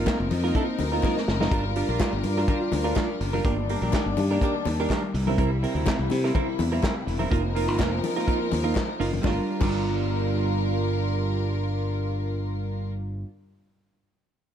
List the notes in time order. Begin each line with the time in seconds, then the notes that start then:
Already playing: F3 C4 D#4 A#4
0.06 A#3 D#4 F4 A#4, kick, snare, clap, closed hi-hat, high conga
0.09 clap
0.20 F1, muted clean electric guitar stroke
0.31 F2, muted clean electric guitar stroke, open hi-hat, muted conga
0.44 A#3 D#4 F4 A#4, snare
0.55 A#3 D#4 F4 A#4, kick, closed hi-hat, muted conga
0.68 muted clean electric guitar stroke
0.79 D2, muted clean electric guitar stroke, clap, open hi-hat, muted conga
0.92 A#3 D#4 F4 A#4
1.03 A#3 D#4 F4 A#4, kick, snare, clap, high conga
1.17 muted clean electric guitar stroke, snare
1.28 F#1, muted clean electric guitar stroke, snare
1.40 A#3 D#4 F4 A#4, snare, high conga
1.50 G1 G3 D4 F4 A#4, kick, closed hi-hat
1.65 muted clean electric guitar stroke
1.76 G3 D4 F4 A#4, open hi-hat
1.89 A#1 G3 D4 F4 A#4
1.99 G3 D4 F4 A#4, kick, snare, clap, closed hi-hat, high conga
2.13 G1, muted clean electric guitar stroke
2.23 G2, muted clean electric guitar stroke, open hi-hat, muted conga
2.37 G3 D4 F4 A#4, snare
2.48 G3 D4 F4 A#4, kick, closed hi-hat, muted conga, low conga
2.61 muted clean electric guitar stroke
2.72 D2, muted clean electric guitar stroke, clap, open hi-hat, muted conga
2.84 G3 D4 F4 A#4
2.96 G3 D4 F4 A#4, kick, snare, clap, closed hi-hat, high conga
2.98 clap
3.09 muted clean electric guitar stroke
3.21 F#1, muted clean electric guitar stroke, open hi-hat
3.33 G3 D4 F4 A#4, high conga
3.44 G1 D#3 A#3 D4 G4 A#4, kick, closed hi-hat
3.58 muted clean electric guitar stroke
3.69 A#3 D4 G4 A#4, open hi-hat
3.82 A#1 A#3 D4 G4 A#4
3.92 A#3 D4 G4 A#4, kick, snare, clap, closed hi-hat, high conga
3.95 clap
4.06 G1, muted clean electric guitar stroke
4.17 G2, muted clean electric guitar stroke, open hi-hat, muted conga
4.31 A#3 D4 G4 A#4
4.41 A#3 D4 G4 A#4, kick, closed hi-hat, muted conga
4.56 muted clean electric guitar stroke
4.65 D#2, muted clean electric guitar stroke, clap, open hi-hat, muted conga
4.80 A#3 D4 G4 A#4
4.89 A#3 D4 G4 A#4, kick, snare, clap, closed hi-hat, high conga
4.92 clap
5.04 muted clean electric guitar stroke
5.13 C2 C3 A#3 E4, muted clean electric guitar stroke, open hi-hat
5.27 G3 C4 E4 A#4, high conga
5.38 G3 C4 E4 A#4, kick, closed hi-hat
5.51 muted clean electric guitar stroke
5.62 G3 C4 E4 A#4, open hi-hat
5.75 D2 G3 C4 E4 A#4
5.86 G3 C4 E4 A#4, kick, snare, clap, closed hi-hat, high conga
5.89 clap
5.99 C2, muted clean electric guitar stroke
6.10 C3, muted clean electric guitar stroke, open hi-hat, muted conga
6.24 G3 C4 E4 A#4, snare
6.35 G3 C4 E4 A#4, kick, closed hi-hat, low conga
6.49 muted clean electric guitar stroke
6.59 E2, muted clean electric guitar stroke, clap, open hi-hat, muted conga
6.72 G3 C4 E4 A#4
6.83 G3 C4 E4 A#4, kick, snare, clap, closed hi-hat, high conga
6.85 clap
6.95 muted clean electric guitar stroke
7.06 E1, muted clean electric guitar stroke, open hi-hat
7.19 G3 C4 E4 A#4, high conga
7.30 F1 F3 A#3 C4 D#4 F4 A#4, kick, closed hi-hat
7.44 muted clean electric guitar stroke
7.55 A#3 D#4 F4 A#4, open hi-hat
7.68 G1 A#3 D#4 F4 A#4
7.79 F1 A#3 D#4 F4 A#4, kick, snare, clap, closed hi-hat, high conga
7.82 clap
7.92 muted clean electric guitar stroke
8.04 muted clean electric guitar stroke, open hi-hat, muted conga
8.16 A#3 D#4 F4 A#4, snare
8.27 A#3 D#4 F4 A#4, kick, closed hi-hat
8.40 muted clean electric guitar stroke
8.51 D#2, muted clean electric guitar stroke, clap, open hi-hat, muted conga
8.64 A#3 D#4 F4 A#4
8.75 muted clean electric guitar stroke, kick, snare, clap, closed hi-hat, high conga
8.78 clap
8.88 muted clean electric guitar stroke
9.00 F#1 A#3 D#4 F4 A#4, open hi-hat
9.13 muted clean electric guitar stroke, high conga
9.22 G1 G3 D4 F4 A#4, kick, snare, clap, muted conga
9.27 A#4
9.60 G1 G3 D4 F4, kick, clap, crash, muted conga
9.65 A#4